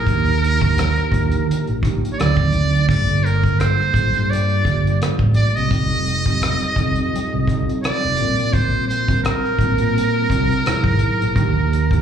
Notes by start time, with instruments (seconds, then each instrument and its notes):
Already playing: muted trumpet A#4
0.07 fingered electric bass D#2, tine electric piano F3 A#3 D4 D#4 G4, kick, closed hi-hat
0.26 closed hi-hat
0.44 closed hi-hat
0.61 tine electric piano F3 A#3 D4 D#4 G4, kick, closed hi-hat
0.78 cross-stick, closed hi-hat
0.96 cross-stick, closed hi-hat
1.12 fingered electric bass D#2, tine electric piano F3 A#3 D4 D#4, kick, closed hi-hat
1.16 tine electric piano F4
1.22 tine electric piano G4
1.32 fingered electric bass D#3, closed hi-hat
1.50 muted fingered electric bass stroke, closed hi-hat
1.67 fingered electric bass A#1, closed hi-hat
1.83 tine electric piano F3 A#3 D4 D#4 G4, kick, cross-stick, closed hi-hat
2.05 closed hi-hat
2.13 muted trumpet C#5
2.18 fingered electric bass D2, tine electric piano F#3 C4 D4 D#4 A4, muted trumpet D5, cross-stick, closed hi-hat
2.37 fingered electric bass D#2, kick, closed hi-hat
2.53 fingered electric bass D2, closed hi-hat
2.75 closed hi-hat
2.89 fingered electric bass G1, tine electric piano G3 A#3 D4 F4 A4, muted trumpet D5, kick, closed hi-hat
3.08 closed hi-hat
3.25 muted trumpet A#4, closed hi-hat
3.42 tine electric piano G3 A#3 D4 F4 A4, kick, closed hi-hat
3.60 muted trumpet C5, cross-stick, closed hi-hat
3.80 cross-stick
3.94 fingered electric bass A#1, tine electric piano G3 A#3 D4 F4 A4, kick, closed hi-hat
4.14 fingered electric bass G2, closed hi-hat
4.30 muted trumpet D5, closed hi-hat
4.49 closed hi-hat
4.65 fingered electric bass G1, tine electric piano G3 A#3 D4 F4 G4, kick, cross-stick, closed hi-hat
4.87 closed hi-hat
5.02 cross-stick, closed hi-hat
5.19 fingered electric bass A1, kick
5.34 muted trumpet D5, closed hi-hat
5.56 fingered electric bass C2, muted trumpet D#5, closed hi-hat
5.71 fingered electric bass F1, tine electric piano G3 C4 D#4 F4 A4, kick, closed hi-hat
5.90 closed hi-hat
6.08 closed hi-hat
6.26 tine electric piano G3 C4 D#4 F4 G4, kick, closed hi-hat
6.42 cross-stick, closed hi-hat
6.60 cross-stick, closed hi-hat
6.76 fingered electric bass F1, tine electric piano G3 C4 D#4 F4, kick, closed hi-hat
6.80 tine electric piano A4
6.96 fingered electric bass F2, closed hi-hat
7.15 muted fingered electric bass stroke, closed hi-hat
7.34 fingered electric bass C2
7.47 tine electric piano G3 C4 D#4 F4 A4, kick, cross-stick, closed hi-hat
7.69 closed hi-hat
7.83 muted trumpet D5, cross-stick, closed hi-hat
8.04 fingered electric bass F1
8.17 fingered electric bass A#1, tine electric piano G3 C4 D4 F4, closed hi-hat
8.21 tine electric piano A#4
8.39 closed hi-hat
8.53 muted trumpet C5, kick, closed hi-hat
8.88 muted trumpet C5, closed hi-hat
9.08 tine electric piano G3 C4 D4 F4 A#4, kick, closed hi-hat
9.24 muted trumpet A#4, cross-stick, closed hi-hat
9.45 cross-stick
9.59 fingered electric bass A#1, tine electric piano G3 C4 D4 F4, kick, closed hi-hat
9.63 tine electric piano A#4
9.78 fingered electric bass A#2, closed hi-hat
9.98 closed hi-hat
10.30 fingered electric bass C2, tine electric piano G3 C4 D4 F4 A#4, kick, cross-stick, closed hi-hat
10.52 closed hi-hat
10.65 fingered electric bass E1, tine electric piano F#3 B3 D#4 E4 G#4, cross-stick, closed hi-hat
10.84 fingered electric bass G#1, kick
10.99 closed hi-hat
11.22 fingered electric bass A#1, closed hi-hat
11.36 fingered electric bass D#2, tine electric piano F3 A#3 D4 D#4 G4, kick, closed hi-hat
11.73 closed hi-hat
11.91 tine electric piano F3 A#3 D4 D#4 G4, kick, closed hi-hat